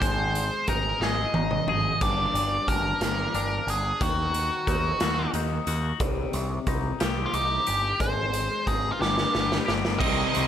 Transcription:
0.00 picked electric bass G#1, clean electric guitar G#3, lead electric guitar C5, kick, closed hi-hat
0.35 closed hi-hat
0.67 picked electric bass G#1, clean electric guitar D#4, lead electric guitar A#4, kick, closed hi-hat
1.00 picked electric bass G#1, clean electric guitar G#4, lead electric guitar D#5, snare
1.34 picked electric bass G#1, clean electric guitar D#4, high tom
1.51 mid tom
1.67 picked electric bass G#1, clean electric guitar G#4, mid tom
2.01 picked electric bass G1, clean electric guitar G2, lead electric guitar D5, kick, closed hi-hat, crash
2.34 picked electric bass G1, closed hi-hat
2.67 picked electric bass G1, clean electric guitar D4, lead electric guitar A#4, kick, closed hi-hat
3.01 picked electric bass G1, snare, closed hi-hat
3.34 picked electric bass G1, clean electric guitar D4, closed hi-hat
3.67 picked electric bass G1, lead electric guitar G#4, closed hi-hat
4.01 picked electric bass D#2, clean electric guitar D#3, lead electric guitar F#4, kick, closed hi-hat
4.34 closed hi-hat
4.67 picked electric bass D#2, clean electric guitar D#4, kick, closed hi-hat
5.00 picked electric bass D#2, clean electric guitar F#4, snare, closed hi-hat
5.34 picked electric bass D#2, clean electric guitar D#4, closed hi-hat
5.67 picked electric bass D#2, clean electric guitar F#4, closed hi-hat
6.00 picked electric bass C2, clean electric guitar C3, kick, closed hi-hat
6.33 picked electric bass C2, closed hi-hat
6.67 picked electric bass C2, clean electric guitar D#4, kick, closed hi-hat
7.00 picked electric bass C2, clean electric guitar G4, snare, closed hi-hat
7.26 lead electric guitar F4
7.34 picked electric bass C2, clean electric guitar D#4, lead electric guitar G4, closed hi-hat
7.67 picked electric bass G1, clean electric guitar G4, closed hi-hat
8.00 picked electric bass G#1, clean electric guitar G#3, lead electric guitar C5, kick, closed hi-hat
8.33 closed hi-hat
8.67 picked electric bass G#1, clean electric guitar D#4, lead electric guitar G#4, kick, closed hi-hat
8.92 lead electric guitar F4
8.99 picked electric bass G1, clean electric guitar G2, lead electric guitar G4, snare
9.18 snare
9.33 picked electric bass G1, clean electric guitar B3, snare
9.52 snare
9.66 picked electric bass G1, clean electric guitar G4, snare
9.85 snare
9.98 picked electric bass C2, clean electric guitar C3 D#3 G3, overdriven electric guitar C3 G3 C4, lead electric guitar D#5, kick, crash
10.34 picked electric bass C2, overdriven electric guitar C3 G3 C4, closed hi-hat

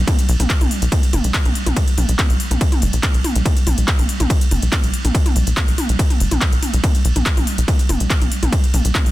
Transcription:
0.07 kick, closed hi-hat, mid tom, ride
0.19 closed hi-hat
0.29 analog synth bass B1, open hi-hat
0.40 analog synth bass B1, closed hi-hat, mid tom
0.50 kick, clap, closed hi-hat, ride
0.61 analog synth bass B1, open hi-hat, mid tom
0.71 open hi-hat
0.82 analog synth bass B1, closed hi-hat
0.92 kick, closed hi-hat, mid tom, ride
1.03 closed hi-hat
1.13 analog synth bass F#1, open hi-hat, mid tom
1.24 analog synth bass B1, closed hi-hat
1.34 kick, clap, closed hi-hat, ride
1.45 analog synth bass B1, closed hi-hat, mid tom
1.55 open hi-hat
1.66 analog synth bass B1, closed hi-hat, mid tom
1.76 kick, closed hi-hat, ride
1.88 closed hi-hat
1.98 analog synth bass B1, open hi-hat, mid tom
2.09 analog synth bass B1, closed hi-hat
2.19 kick, clap, closed hi-hat, mid tom, ride
2.30 analog synth bass B1, open hi-hat
2.40 open hi-hat
2.51 analog synth bass B1, closed hi-hat, mid tom
2.61 kick, closed hi-hat, ride
2.72 closed hi-hat, mid tom
2.82 analog synth bass F#1, open hi-hat
2.93 analog synth bass B1, closed hi-hat
3.03 kick, clap, closed hi-hat, mid tom, ride
3.14 analog synth bass B1, closed hi-hat
3.24 open hi-hat, mid tom
3.35 analog synth bass B1, closed hi-hat
3.45 kick, closed hi-hat, mid tom, ride
3.57 closed hi-hat
3.67 analog synth bass B1, open hi-hat, mid tom
3.78 analog synth bass B1, closed hi-hat
3.88 kick, clap, closed hi-hat, ride
3.99 analog synth bass B1, open hi-hat, mid tom
4.09 open hi-hat
4.20 analog synth bass B1, closed hi-hat, mid tom
4.30 kick, closed hi-hat, ride
4.41 closed hi-hat
4.51 analog synth bass F#1, open hi-hat, mid tom
4.62 analog synth bass B1, closed hi-hat
4.72 kick, clap, closed hi-hat, mid tom, ride
4.84 analog synth bass B1, closed hi-hat
4.94 open hi-hat
5.05 analog synth bass B1, closed hi-hat, mid tom
5.15 kick, closed hi-hat, ride
5.26 closed hi-hat, mid tom
5.36 analog synth bass B1, open hi-hat
5.47 analog synth bass B1, closed hi-hat
5.57 kick, clap, closed hi-hat, mid tom, ride
5.68 analog synth bass B1, open hi-hat
5.78 open hi-hat, mid tom
5.89 analog synth bass B1, closed hi-hat
5.99 kick, closed hi-hat, ride
6.10 closed hi-hat, mid tom
6.20 analog synth bass F#1, open hi-hat
6.31 analog synth bass B1, closed hi-hat, mid tom
6.41 kick, clap, closed hi-hat, ride
6.52 analog synth bass B1, closed hi-hat
6.63 open hi-hat, mid tom
6.74 analog synth bass B1, closed hi-hat
6.84 kick, closed hi-hat, mid tom, ride
6.95 closed hi-hat
7.05 analog synth bass B1, open hi-hat
7.16 analog synth bass B1, closed hi-hat, mid tom
7.26 kick, clap, closed hi-hat, ride
7.37 analog synth bass B1, open hi-hat, mid tom
7.47 open hi-hat
7.58 analog synth bass B1, closed hi-hat
7.68 kick, closed hi-hat, mid tom, ride
7.79 closed hi-hat
7.89 analog synth bass F#1, open hi-hat, mid tom
8.00 analog synth bass B1, closed hi-hat
8.10 kick, clap, closed hi-hat, ride
8.21 analog synth bass B1, closed hi-hat, mid tom
8.32 open hi-hat
8.42 analog synth bass B1, closed hi-hat, mid tom
8.52 kick, closed hi-hat, ride
8.64 closed hi-hat
8.74 analog synth bass B1, open hi-hat, mid tom
8.85 analog synth bass B1, closed hi-hat
8.95 kick, clap, closed hi-hat, mid tom, ride
9.06 analog synth bass B1, open hi-hat

